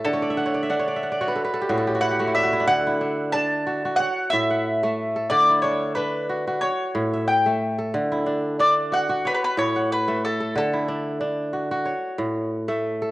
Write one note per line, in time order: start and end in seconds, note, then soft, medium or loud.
0.00 1.57 A3 medium
0.00 1.22 A4 medium
0.00 0.30 E5 medium
0.00 0.20 F#5 medium
0.05 1.41 D3 medium
0.05 1.32 A4 medium
0.13 0.45 C#5 medium
0.22 0.52 D5 medium
0.30 0.62 E5 medium
0.37 0.70 F#5 medium
0.46 0.76 C#5 medium
0.54 0.85 D5 medium
0.63 0.96 E5 medium
0.70 1.27 D4 medium
0.70 1.03 F#5 medium
0.79 1.18 C#5 medium
0.88 1.11 D5 medium
0.96 2.00 E5 medium
1.03 1.67 F#5 medium
1.12 2.23 D5 medium
1.21 1.67 F#4 medium
1.21 2.41 C#5 medium
1.28 1.44 B4 medium
1.36 1.53 A4 medium
1.45 2.67 B4 medium
1.54 1.77 A4 medium
1.61 1.87 G4 medium
1.69 2.73 A2 medium
1.69 1.93 F#4 medium
1.78 3.09 A4 medium
1.87 2.11 G4 medium
1.95 2.17 F#4 medium
2.01 2.27 E4 medium
2.01 2.34 F#5 medium
2.11 2.49 G4 medium
2.19 4.19 A3 medium
2.19 2.43 F#4 medium
2.27 2.52 E4 medium
2.35 2.60 D4 medium
2.35 2.67 E5 medium
2.43 3.66 F#4 medium
2.53 2.86 E4 medium
2.60 3.00 D4 medium
2.67 4.04 D3 medium
2.67 3.32 F#5 loud
2.87 4.43 E4 medium
3.01 3.33 D4 medium
3.32 4.06 D4 medium
3.32 3.96 A5 medium
3.66 3.85 F#4 medium
3.85 5.31 F#4 medium
3.96 5.14 C#5 medium
3.96 4.28 F#5 medium
4.30 5.36 A2 medium
4.30 5.29 E5 medium
4.50 5.47 F#5 medium
4.83 6.83 A3 medium
4.83 5.86 E5 medium
5.16 6.48 A4 medium
5.30 6.67 D3 medium
5.30 5.62 D5 medium
5.49 7.06 E4 medium
5.62 5.96 D4 medium
5.62 5.93 C#5 medium
5.95 6.69 D4 medium
5.95 6.61 B4 medium
6.29 6.47 F#4 medium
6.47 7.94 F#4 medium
6.61 7.23 C#5 medium
6.61 7.77 C#5 medium
6.95 7.98 A2 medium
7.14 7.45 E5 medium
7.28 7.75 G5 medium
7.46 9.46 A3 medium
7.46 8.49 E5 medium
7.78 9.10 A4 medium
7.94 9.29 D3 medium
8.12 9.68 E4 medium
8.26 8.59 D4 medium
8.59 9.31 D4 medium
8.59 8.90 D5 medium
8.92 9.09 F#4 medium
8.92 9.26 F#5 medium
9.09 10.55 F#4 medium
9.25 9.33 B4 medium
9.25 10.40 C#5 medium
9.35 9.43 B4 medium
9.44 9.58 B4 medium
9.57 10.60 A2 medium
9.57 9.91 C#5 medium
9.76 10.72 F#5 medium
9.92 10.24 B4 medium
10.08 12.08 A3 medium
10.08 11.11 E5 medium
10.25 10.54 A4 medium
10.40 11.72 A4 medium
10.55 11.91 D3 medium
10.55 11.83 A4 medium
10.73 12.30 E4 medium
10.88 11.20 D4 medium
11.21 11.92 D4 medium
11.53 11.71 F#4 medium
11.71 13.11 F#4 medium
11.86 13.00 C#5 medium
12.18 13.11 A2 medium
12.68 13.11 A3 medium
12.68 13.11 E5 medium
13.02 13.11 A4 medium